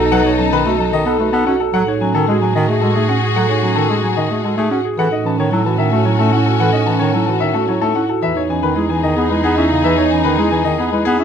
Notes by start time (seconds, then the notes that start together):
Already playing: B1 D#4 A4
0.00 A4
0.11 F#3 B4 F#5
0.25 D#4 C#5
0.39 F#3 C#4 A5
0.52 D#3 D#4 B4
0.65 A3 F#4 A4
0.79 F#3 A4 A5
0.92 D#3 D#4 D#5
1.06 B3 A4
1.19 A3 F#4 B4
1.33 B3 D#4 A4
1.46 C#4 F#4 F#5
1.60 A4
1.73 A2 F#3 F#4 G#4 A4 F#5
1.87 D#4 C#5
2.01 F#3 C#4 G#5
2.14 D#3 D#4 A4
2.28 G#3 F#4 G#4
2.41 F#3 G#4 G#5
2.55 D#3 D#4 D#5
2.68 A3 G#4
2.81 G#3 F#4 A4
2.95 A3 D#4 G#4
3.09 C#4 F#4 F#5
3.22 G#4
3.36 F#3 A4 F#5
3.49 D#4 C#5
3.62 F#3 C#4 G#5
3.76 D#3 D#4 A4
3.89 G#3 F#4 G#4
4.03 F#3 G#4 G#5
4.17 D#3 D#4 D#5
4.31 A3 G#4
4.43 G#3 F#4 A4
4.57 A3 D#4 G#4
4.71 C#4 F#4 F#5
4.84 G#4
4.97 A2 E3 C#4 F#4 A4 F#5
5.11 D#4 D#5
5.24 E3 C#4 A5
5.38 D#3 D#4 C#5
5.51 F#3 E4 A4
5.65 E3 F#4 A5
5.78 D#3 D#4 E5
5.92 A3 F#4 A4
6.05 F#3 E4 C#5
6.19 A3 D#4 A4
6.33 C#4 E4 F#5
6.46 F#4 A4
6.60 E3 A4 F#5
6.73 D#4 D#5
6.86 E3 C#4 A5
6.99 D#3 D#4 C#5
7.14 F#3 E4 A4
7.26 E3 F#4 A5
7.40 D#3 D#4 E5
7.54 A3 F#4 A4
7.68 F#3 E4 C#5
7.81 A3 D#4 A4
7.95 C#4 E4 F#5
8.09 F#4 A4
8.21 E2 E3 D#4 G#4 B4 E5
8.35 D#4 C#5
8.49 E3 C#4 G#5
8.63 D#3 D#4 B4
8.76 G#3 E4 G#4
8.89 E3 G#4 G#5
9.03 D#3 D#4 D#5
9.16 B3 G#4
9.30 G#3 E4 B4
9.44 B3 D#4 G#4
9.58 C#4 E4 E5
9.71 C#3 G#4
9.84 E3 B4 E5
9.98 D#4 C#5
10.11 E3 C#4 G#5
10.24 D#3 D#4 B4
10.38 G#3 E4 G#4
10.51 E3 G#4 G#5
10.64 D#3 D#4 D#5
10.78 B3 G#4
10.92 G#3 E4 B4
11.05 B3 D#4 G#4
11.19 C#4 E4 E5